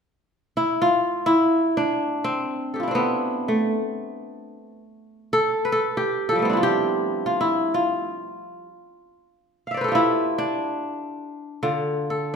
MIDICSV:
0, 0, Header, 1, 2, 480
1, 0, Start_track
1, 0, Tempo, 500000
1, 11864, End_track
2, 0, Start_track
2, 0, Title_t, "Kora"
2, 0, Program_c, 0, 46
2, 546, Note_on_c, 0, 64, 73
2, 783, Note_on_c, 0, 65, 82
2, 841, Note_off_c, 0, 64, 0
2, 1211, Note_on_c, 0, 64, 84
2, 1268, Note_off_c, 0, 65, 0
2, 1700, Note_on_c, 0, 62, 75
2, 2154, Note_on_c, 0, 60, 79
2, 2628, Note_on_c, 0, 69, 34
2, 2647, Note_on_c, 0, 67, 34
2, 2685, Note_on_c, 0, 65, 39
2, 2714, Note_off_c, 0, 64, 0
2, 2718, Note_on_c, 0, 64, 38
2, 2758, Note_off_c, 0, 62, 0
2, 2761, Note_on_c, 0, 62, 45
2, 2790, Note_off_c, 0, 60, 0
2, 2794, Note_on_c, 0, 60, 52
2, 2832, Note_on_c, 0, 59, 68
2, 3344, Note_on_c, 0, 57, 55
2, 3893, Note_off_c, 0, 69, 0
2, 4002, Note_off_c, 0, 67, 0
2, 4138, Note_off_c, 0, 65, 0
2, 4222, Note_off_c, 0, 64, 0
2, 4374, Note_off_c, 0, 62, 0
2, 4522, Note_off_c, 0, 60, 0
2, 4621, Note_off_c, 0, 59, 0
2, 5116, Note_on_c, 0, 69, 78
2, 5261, Note_off_c, 0, 57, 0
2, 5422, Note_on_c, 0, 71, 57
2, 5490, Note_off_c, 0, 69, 0
2, 5494, Note_on_c, 0, 69, 80
2, 5732, Note_on_c, 0, 67, 76
2, 6034, Note_off_c, 0, 69, 0
2, 6038, Note_on_c, 0, 69, 76
2, 6062, Note_on_c, 0, 53, 34
2, 6102, Note_on_c, 0, 55, 37
2, 6135, Note_on_c, 0, 57, 39
2, 6165, Note_on_c, 0, 59, 47
2, 6192, Note_on_c, 0, 60, 48
2, 6236, Note_on_c, 0, 62, 55
2, 6250, Note_off_c, 0, 71, 0
2, 6271, Note_on_c, 0, 64, 53
2, 6307, Note_on_c, 0, 65, 56
2, 6361, Note_off_c, 0, 67, 0
2, 6365, Note_on_c, 0, 67, 83
2, 6965, Note_off_c, 0, 65, 0
2, 6969, Note_on_c, 0, 65, 66
2, 7027, Note_off_c, 0, 64, 0
2, 7110, Note_on_c, 0, 64, 70
2, 7168, Note_off_c, 0, 65, 0
2, 7303, Note_off_c, 0, 69, 0
2, 7434, Note_on_c, 0, 65, 61
2, 7492, Note_off_c, 0, 64, 0
2, 7721, Note_off_c, 0, 67, 0
2, 7848, Note_off_c, 0, 62, 0
2, 7920, Note_off_c, 0, 60, 0
2, 7954, Note_off_c, 0, 59, 0
2, 8052, Note_off_c, 0, 57, 0
2, 8308, Note_off_c, 0, 53, 0
2, 8349, Note_off_c, 0, 55, 0
2, 8887, Note_off_c, 0, 65, 0
2, 9283, Note_on_c, 0, 77, 36
2, 9322, Note_on_c, 0, 76, 39
2, 9353, Note_on_c, 0, 74, 45
2, 9381, Note_on_c, 0, 72, 46
2, 9418, Note_on_c, 0, 71, 52
2, 9448, Note_on_c, 0, 69, 53
2, 9489, Note_on_c, 0, 67, 55
2, 9521, Note_on_c, 0, 65, 57
2, 9552, Note_on_c, 0, 64, 80
2, 9578, Note_off_c, 0, 76, 0
2, 9609, Note_off_c, 0, 77, 0
2, 9969, Note_on_c, 0, 62, 77
2, 10417, Note_off_c, 0, 74, 0
2, 10521, Note_off_c, 0, 72, 0
2, 10599, Note_off_c, 0, 71, 0
2, 10713, Note_off_c, 0, 69, 0
2, 10845, Note_off_c, 0, 67, 0
2, 10974, Note_off_c, 0, 65, 0
2, 11056, Note_off_c, 0, 64, 0
2, 11162, Note_on_c, 0, 50, 67
2, 11163, Note_on_c, 0, 65, 55
2, 11581, Note_off_c, 0, 62, 0
2, 11618, Note_on_c, 0, 69, 59
2, 11864, Note_off_c, 0, 50, 0
2, 11864, Note_off_c, 0, 65, 0
2, 11864, Note_off_c, 0, 69, 0
2, 11864, End_track
0, 0, End_of_file